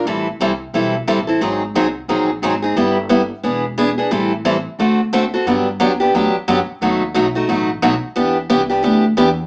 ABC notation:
X:1
M:4/4
L:1/16
Q:"Swing" 1/4=178
K:G
V:1 name="Steel-string acoustic guitar"
[E,G,CEA]2 z2 [E,G,CEA] z3 [E,G,CEA]2 z2 [E,G,CEA] z [CEA]2 | [_E,_G,C_E_A]2 z2 [E,G,CEA] z3 [E,G,CEA]2 z2 [E,G,CEA] z [CEA]2 | [G,B,EG]2 z2 [G,B,EG] z3 [E,B,D^G]2 z2 [E,B,DG] z [B,DG]2 | [E,G,CEA]2 z2 [E,G,CEA] z3 [D,A,CFA]2 z2 [D,A,CFA] z [CFA]2 |
[D,F,B,DG]2 z2 [D,F,B,DG] z [B,DG]2 [D,F,B,DG]2 z2 [D,F,B,DG] z3 | [B,,F,A,^DF]2 z2 [B,,F,A,DF] z [A,DF]2 [B,,F,A,DF]2 z2 [B,,F,A,DF] z3 | [E,B,DG]2 z2 [E,B,DG] z [B,DG]2 [E,B,DG]2 z2 [E,B,DG] z3 |]
V:2 name="Upright bass" clef=bass
A,,,4 C,,4 B,,,4 A,,,4 | _A,,,4 C,,4 _B,,,4 A,,,4 | G,,,8 E,,,8 | A,,,8 D,,8 |
G,,4 E,,4 D,,2 z2 F,,2 z2 | ^D,,4 B,,,4 A,,,4 B,,,2 z2 | E,,4 C,,4 D,,4 E,,4 |]